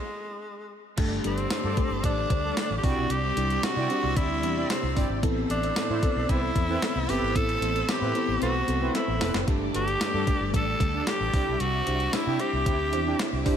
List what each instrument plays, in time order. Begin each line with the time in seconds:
Already playing: tenor saxophone G#3
0.97 fingered electric bass G1, overdriven electric guitar G2 D3 G3, fm electric piano G2 A3 D4 G4 A4, string machine G4 D5 A5 D6, kick, closed hi-hat, crash
1.23 fingered electric bass G1, fm electric piano A3 D4 G4 A4, tenor saxophone C4, closed hi-hat
1.38 closed hi-hat
1.50 overdriven electric guitar G2 D3 G3, fm electric piano A3 D4 G4 C5, snare, closed hi-hat, tambourine
1.64 fingered electric bass G2, analog polysynth D4 A4
1.76 overdriven electric guitar D3 G3, fm electric piano A3 D4 G4 A4, kick, closed hi-hat
1.90 fingered electric bass G1
2.03 fingered electric bass A1, overdriven electric guitar G2 D3 G3, fm electric piano A3 D4 G4 C5, analog polysynth D4 A4, tenor saxophone D4, kick, closed hi-hat
2.30 fingered electric bass D2, fm electric piano A3 D4 G4 C5, kick, closed hi-hat
2.44 analog polysynth D4 A4
2.57 fm electric piano A3 D4 G4 A4, snare, closed hi-hat, tambourine
2.70 fingered electric bass A1
2.78 tenor saxophone G4
2.83 fingered electric bass C2, fm electric piano C3 C4 D4 E4 G4, overdriven electric guitar C3 G3 C4, string machine G3 C6 E6, analog polysynth E4 G4 D5, tenor saxophone F#4, kick, open hi-hat
2.96 fingered electric bass B1
3.10 fingered electric bass C2, tenor saxophone G4, closed hi-hat
3.36 fingered electric bass C2, fm electric piano C4 D4 E4 G4, closed hi-hat
3.50 closed hi-hat
3.62 overdriven electric guitar C3 G3 C4, fm electric piano C4 D4 E4 G4, tenor saxophone F#4, snare, closed hi-hat, tambourine
3.76 fingered electric bass C3, analog polysynth E4 G4 D5
3.89 overdriven electric guitar G3 C4, fm electric piano C4 D4 E4 G4, closed hi-hat
4.03 fingered electric bass C2
4.15 fingered electric bass D2, overdriven electric guitar C3 G3, fm electric piano C4 D4 E4 G4, analog polysynth E4 G4 D5, tenor saxophone E4, kick, closed hi-hat
4.19 overdriven electric guitar C4
4.43 fingered electric bass E2, fm electric piano C4 D4 E4 G4, closed hi-hat
4.56 analog polysynth E4 G4 D5
4.70 fm electric piano C4 D4 E4 G4, tenor saxophone C4, snare, closed hi-hat, tambourine
4.83 fingered electric bass C2
4.96 fingered electric bass G1, fm electric piano C4 D4 E4 G4, analog polysynth E4 G4 D5, kick, open hi-hat
5.09 fingered electric bass G#1
5.22 fingered electric bass A1, overdriven electric guitar A2 E3 A3, fm electric piano A2 B3 C4 E4 A4, string machine A4 C5 B5 E6, kick, closed hi-hat
5.49 fingered electric bass A1, fm electric piano B3 C4 E4 A4, tenor saxophone D4, closed hi-hat
5.63 closed hi-hat
5.75 overdriven electric guitar A2 E3 A3, fm electric piano B3 C4 E4 A4, snare, closed hi-hat, tambourine
5.89 fingered electric bass A2, analog polysynth E4 A4 C5
6.02 overdriven electric guitar E3 A3, fm electric piano B3 C4 E4 A4, kick, closed hi-hat
6.16 fingered electric bass B1
6.28 fingered electric bass C2, overdriven electric guitar A2 E3, fm electric piano B3 C4 E4 A4, analog polysynth C4 E4 B4, tenor saxophone E4, kick, closed hi-hat
6.32 overdriven electric guitar A3
6.55 fingered electric bass E2, fm electric piano B3 C4 E4 A4, kick, closed hi-hat
6.69 analog polysynth C4 E4 B4
6.82 fm electric piano B3 C4 E4 A4, snare, closed hi-hat, tambourine
6.95 fingered electric bass C2
7.08 fingered electric bass G1, fm electric piano B3 C4 E4 A4, analog polysynth C4 E4 B4, tenor saxophone G4, open hi-hat
7.22 fingered electric bass G#1
7.35 fingered electric bass A1, overdriven electric guitar A2 E3 A3, fm electric piano A2 B3 C4 E4 A4, tenor saxophone A4, kick, closed hi-hat
7.49 closed hi-hat
7.61 fingered electric bass A1, fm electric piano B3 C4 E4 C5, closed hi-hat
7.76 closed hi-hat
7.87 overdriven electric guitar A2 E3 A3, fm electric piano B3 C4 E4 A4, tenor saxophone G4, snare, closed hi-hat, tambourine
8.01 fingered electric bass A2, analog polysynth C4 E4 B4
8.14 fm electric piano B3 C4 E4 A4, closed hi-hat
8.28 fingered electric bass A1
8.40 fingered electric bass B1, overdriven electric guitar A2 E3, fm electric piano B3 C4 E4 A4, analog polysynth C4 E4 B4, tenor saxophone F#4, closed hi-hat
8.45 overdriven electric guitar A3
8.67 fingered electric bass C2, fm electric piano B3 C4 E4 A4, closed hi-hat
8.81 analog polysynth C4 E4 B4
8.94 fm electric piano B3 C4 E4 A4, tenor saxophone E4, snare, closed hi-hat
9.08 fingered electric bass A1
9.20 fm electric piano B3 C4 E4 A4, analog polysynth C4 E4 B4, snare, open hi-hat
9.34 fingered electric bass F#1, snare
9.47 fingered electric bass G1, overdriven electric guitar G2 D3 G3, fm electric piano G2 A3 D4 G4 A4, string machine G3 D5 A5 D6, kick, closed hi-hat
9.73 fingered electric bass G1, fm electric piano A3 D4 G4 B4, tenor saxophone G4, closed hi-hat
9.88 closed hi-hat
10.00 overdriven electric guitar G2 D3 G3, fm electric piano A3 D4 G4 B4, snare, closed hi-hat, tambourine
10.14 fingered electric bass G2, analog polysynth D4 A4
10.26 overdriven electric guitar D3 G3, fm electric piano A3 D4 G4 A4, kick, closed hi-hat
10.40 fingered electric bass G1
10.53 fingered electric bass A1, overdriven electric guitar G2 D3 G3, fm electric piano A3 D4 G4 A4, analog polysynth D4 A4, tenor saxophone A4, kick, closed hi-hat
10.79 fingered electric bass D2, fm electric piano A3 D4 G4 A4, kick, closed hi-hat
10.94 analog polysynth D4 A4
11.06 fm electric piano A3 D4 G4 A4, tenor saxophone G4, snare, closed hi-hat, tambourine
11.20 fingered electric bass A1
11.33 fingered electric bass C2, fm electric piano C3 D4 E4 G4 C5, overdriven electric guitar C3 G3 C4, analog polysynth D4 E4 G4, string machine E5, kick, open hi-hat
11.47 fingered electric bass B1
11.60 fingered electric bass C2, tenor saxophone F#4, closed hi-hat
11.86 fingered electric bass C2, fm electric piano D4 E4 G4 C5, closed hi-hat
12.00 closed hi-hat
12.12 overdriven electric guitar C3 G3 C4, fm electric piano D4 E4 G4 C5, tenor saxophone E4, muted fingered electric bass stroke, snare, closed hi-hat, tambourine
12.26 fingered electric bass C3, analog polysynth D4 E4 G4
12.39 overdriven electric guitar G3 C4, fm electric piano D4 E4 G4 C5, tenor saxophone G4, closed hi-hat
12.53 fingered electric bass C2
12.65 fingered electric bass D2, overdriven electric guitar C3 G3, fm electric piano D4 E4 G4 C5, analog polysynth D4 E4 G4, kick, closed hi-hat
12.69 overdriven electric guitar C4
12.92 fingered electric bass E2, fm electric piano D4 E4 G4 C5, closed hi-hat
13.06 analog polysynth D4 E4 G4
13.18 fm electric piano D4 E4 G4 C5, snare, closed hi-hat, tambourine
13.33 fingered electric bass C2
13.45 fingered electric bass G1, fm electric piano D4 E4 G4 C5, analog polysynth D4 E4 G4, kick, open hi-hat